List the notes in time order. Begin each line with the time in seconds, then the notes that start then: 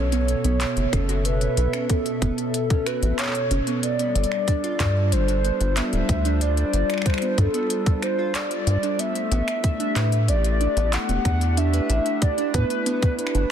Already playing: B1 B2 B3 A4 C#5
0.12 B3, closed hi-hat
0.28 closed hi-hat
0.44 B1 B3, closed hi-hat
0.60 E5, clap, closed hi-hat
0.77 F#1, closed hi-hat
0.93 F#1 C#4 A4, finger snap, kick, closed hi-hat
1.09 F#4, closed hi-hat
1.25 B4, closed hi-hat
1.41 closed hi-hat
1.57 B1, closed hi-hat
1.73 C#4, finger snap, closed hi-hat
1.90 B3 A4, kick, closed hi-hat
2.06 closed hi-hat
2.22 F#1 B3 A4, kick, closed hi-hat
2.38 closed hi-hat
2.54 closed hi-hat
2.70 C#4, kick, closed hi-hat
2.86 F#4 B4, finger snap, closed hi-hat
3.03 A1, closed hi-hat
3.19 C#5, clap, closed hi-hat
3.23 clap
3.27 clap
3.31 clap, closed hi-hat
3.51 F#1 C#4, closed hi-hat
3.67 B3, closed hi-hat
3.83 G3 D5, closed hi-hat
3.99 B3, closed hi-hat
4.15 G1, closed hi-hat
4.23 D4, closed hi-hat
4.32 finger snap
4.48 D4, kick, closed hi-hat
4.64 F4, closed hi-hat
4.80 G2 F4, kick, clap, closed hi-hat
4.94 C5
5.12 G1 C5, closed hi-hat
5.28 D4, closed hi-hat
5.45 B3, closed hi-hat
5.61 G1, closed hi-hat
5.77 B3 E5, clap, closed hi-hat
5.93 D1, closed hi-hat
6.09 D2, kick, closed hi-hat
6.25 D4, closed hi-hat
6.41 F4 D5, closed hi-hat
6.57 closed hi-hat
6.73 G1, closed hi-hat
6.90 finger snap, closed hi-hat
6.94 finger snap
6.98 finger snap
7.02 finger snap
7.06 D4 C5, finger snap, kick, closed hi-hat
7.10 finger snap
7.14 finger snap
7.18 finger snap, closed hi-hat
7.22 B3
7.38 G2 A4, kick, closed hi-hat
7.54 B3, closed hi-hat
7.70 closed hi-hat
7.86 kick, closed hi-hat
8.02 D4 C5, finger snap, closed hi-hat
8.19 F4
8.35 D5, clap, closed hi-hat
8.51 closed hi-hat
8.67 G2, closed hi-hat
8.83 D4, closed hi-hat
8.99 A3 B3 E5, closed hi-hat
9.15 closed hi-hat
9.31 A1 B3, closed hi-hat
9.48 E4, finger snap, closed hi-hat
9.64 kick, closed hi-hat
9.74 G4
9.80 D4, closed hi-hat
9.96 A2 B4, clap, closed hi-hat
10.12 closed hi-hat
10.28 A1 D5, closed hi-hat
10.44 D4, closed hi-hat
10.61 D4, closed hi-hat
10.77 A1 B3, closed hi-hat
10.93 F#5, clap, closed hi-hat
11.09 E1 B3, closed hi-hat
11.25 E2, finger snap, kick, closed hi-hat
11.41 closed hi-hat
11.57 D4 E5, closed hi-hat
11.73 B4, closed hi-hat
11.90 A1, closed hi-hat
12.06 closed hi-hat
12.22 D5, kick, closed hi-hat
12.38 D4, closed hi-hat
12.54 A2 B3 B4, kick, closed hi-hat
12.70 closed hi-hat
12.86 B3, closed hi-hat
13.02 kick, closed hi-hat
13.19 B4, closed hi-hat
13.27 finger snap
13.35 G1 D4, closed hi-hat